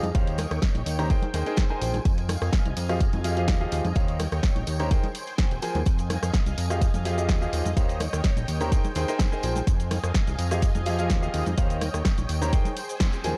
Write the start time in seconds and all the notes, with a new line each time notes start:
Already playing: G#4 D#5 F5
0.03 F2, closed hi-hat, tambourine, high conga
0.15 D#2 D#3 G4 C5 C#5 F5 G5, kick, closed hi-hat, tambourine
0.27 closed hi-hat, tambourine
0.38 cross-stick, open hi-hat, tambourine, high conga
0.51 D#2, cross-stick, closed hi-hat, tambourine
0.62 kick, snare, closed hi-hat, tambourine
0.75 A#1, closed hi-hat, tambourine, high conga
0.86 D#2, open hi-hat, tambourine
0.99 D#3 G4 C5 C#5 A#5, cross-stick, closed hi-hat, tambourine
1.10 D#4 G#4 A#4 C5 G5 G#5, kick, closed hi-hat, tambourine
1.22 closed hi-hat, tambourine, high conga
1.34 D#2 D#4 G#4 A#4 C5 G5, open hi-hat, tambourine
1.46 D#4 G#4 A#4 C5 G5, closed hi-hat, tambourine
1.57 kick, snare, closed hi-hat, tambourine, high conga
1.69 D#4 G#4 A#4 C5 G#5, tambourine
1.81 A#1 F3 G#4 A#4 C5 G5, open hi-hat, tambourine
1.94 closed hi-hat, tambourine, high conga
2.05 F2 D#5 F5, kick, closed hi-hat, tambourine
2.18 closed hi-hat, tambourine
2.29 cross-stick, open hi-hat, tambourine, high conga
2.42 F2, cross-stick, closed hi-hat, tambourine
2.53 kick, snare, closed hi-hat, tambourine
2.65 C2, closed hi-hat, tambourine, high conga
2.77 F2, open hi-hat, tambourine
2.89 F3 G4 G#4 D#5 F5, cross-stick, closed hi-hat, tambourine
3.00 kick, closed hi-hat, tambourine
3.13 F2, closed hi-hat, tambourine, high conga
3.24 F3 G4 G#4 D#5 F5, open hi-hat, tambourine
3.37 F3 G4 G#4 D#5 F5, closed hi-hat, tambourine
3.48 D#2, kick, snare, closed hi-hat, tambourine, high conga
3.61 F3 G4 G#4 D#5 F5, tambourine
3.72 D#2, open hi-hat, tambourine
3.85 F2, closed hi-hat, tambourine, high conga
3.95 D#2 D#3 G4 C5 C#5 F5 G5, kick, closed hi-hat, tambourine
4.08 closed hi-hat, tambourine
4.19 cross-stick, open hi-hat, tambourine, high conga
4.32 D#2, cross-stick, closed hi-hat, tambourine
4.43 kick, snare, closed hi-hat, tambourine
4.55 A#1, closed hi-hat, tambourine, high conga
4.67 D#2, open hi-hat, tambourine
4.79 D#3 G4 C5 C#5 A#5, cross-stick, closed hi-hat, tambourine
4.91 D#4 G#4 A#4 C5 G5 G#5, kick, closed hi-hat, tambourine
5.03 closed hi-hat, tambourine, high conga
5.15 open hi-hat, tambourine
5.27 closed hi-hat, tambourine
5.38 kick, snare, closed hi-hat, tambourine, high conga
5.51 D#1, closed hi-hat, tambourine
5.62 F3 G#4 A#4 C5 G#5, open hi-hat, tambourine
5.75 D#2, closed hi-hat, tambourine, high conga
5.86 F2 D#5 F5, kick, closed hi-hat, tambourine, shaker
5.98 closed hi-hat, tambourine, shaker
6.10 cross-stick, open hi-hat, tambourine, high conga
6.23 F2, cross-stick, closed hi-hat, tambourine, shaker
6.34 kick, snare, closed hi-hat, tambourine, shaker
6.46 C2, closed hi-hat, tambourine, high conga, shaker
6.58 F2, open hi-hat, tambourine
6.70 F3 G4 G#4 D#5 F5, cross-stick, closed hi-hat, tambourine, shaker
6.81 kick, closed hi-hat, tambourine, shaker
6.94 F2, closed hi-hat, tambourine, high conga, shaker
7.05 F3 G4 G#4 D#5 F5, open hi-hat, tambourine
7.18 F3 G4 G#4 D#5 F5, closed hi-hat, tambourine, shaker
7.29 D#2, kick, snare, closed hi-hat, tambourine, high conga, shaker
7.42 F3 G4 G#4 D#5 F5, tambourine, shaker
7.53 D#2, open hi-hat, tambourine
7.65 F2, closed hi-hat, tambourine, high conga, shaker
7.77 D#2 D#3 G4 C5 C#5 F5 G5, kick, closed hi-hat, tambourine, shaker
7.89 closed hi-hat, tambourine, shaker
8.00 cross-stick, open hi-hat, tambourine, high conga
8.13 D#2, cross-stick, closed hi-hat, tambourine, shaker
8.24 kick, snare, closed hi-hat, tambourine, shaker
8.37 A#1, closed hi-hat, tambourine, high conga, shaker
8.48 D#2, open hi-hat, tambourine
8.60 D#3 G4 C5 C#5 A#5, cross-stick, closed hi-hat, tambourine, shaker
8.72 D#4 G#4 A#4 C5 G5 G#5, kick, closed hi-hat, tambourine, shaker
8.84 closed hi-hat, tambourine, high conga, shaker
8.95 D#2 D#4 G#4 A#4 C5 G5, open hi-hat, tambourine
9.08 D#4 G#4 A#4 C5 G5, closed hi-hat, tambourine, shaker
9.19 kick, snare, closed hi-hat, tambourine, high conga, shaker
9.32 D#4 G#4 A#4 C5 G#5, tambourine, shaker
9.43 A#1 F3 G#4 A#4 C5 G5, open hi-hat, tambourine
9.55 closed hi-hat, tambourine, high conga, shaker
9.67 F2 D#5 F5 G#5, kick, closed hi-hat, tambourine, shaker
9.80 closed hi-hat, tambourine, shaker
9.91 cross-stick, open hi-hat, tambourine, high conga
10.04 F2, cross-stick, closed hi-hat, tambourine, shaker
10.14 kick, snare, closed hi-hat, tambourine, shaker
10.27 C2, closed hi-hat, tambourine, high conga, shaker
10.39 F2, open hi-hat, tambourine
10.51 F3 G4 G#4 D#5 F5, cross-stick, closed hi-hat, tambourine, shaker
10.62 kick, closed hi-hat, tambourine, shaker
10.75 F2, closed hi-hat, tambourine, high conga, shaker
10.86 F3 G4 G#4 D#5 F5, open hi-hat, tambourine
10.99 F3 G4 G#4 D#5 F5, closed hi-hat, tambourine, shaker
11.10 D#2, kick, snare, closed hi-hat, tambourine, high conga, shaker
11.23 F3 G4 G#4 D#5 F5, tambourine, shaker
11.34 D#2, open hi-hat, tambourine
11.46 F2, closed hi-hat, tambourine, high conga, shaker
11.58 D#2 D#3 G4 C5 C#5 F5 G5, kick, closed hi-hat, tambourine, shaker
11.70 closed hi-hat, tambourine, shaker
11.81 cross-stick, open hi-hat, tambourine, high conga
11.94 D#2, cross-stick, closed hi-hat, tambourine, shaker
12.05 kick, snare, closed hi-hat, tambourine, shaker
12.18 A#1, closed hi-hat, tambourine, high conga, shaker
12.29 D#2, open hi-hat, tambourine
12.42 D#3 G4 C5 C#5 A#5, cross-stick, closed hi-hat, tambourine, shaker
12.52 D#4 G#4 A#4 C5 G5, kick, closed hi-hat, tambourine, shaker
12.65 closed hi-hat, tambourine, high conga, shaker
12.77 open hi-hat, tambourine
12.89 closed hi-hat, tambourine, shaker
13.00 kick, snare, closed hi-hat, tambourine, high conga, shaker
13.12 closed hi-hat, tambourine, shaker
13.24 D#2 F3 G#4 A#4 C5 G#5, open hi-hat, tambourine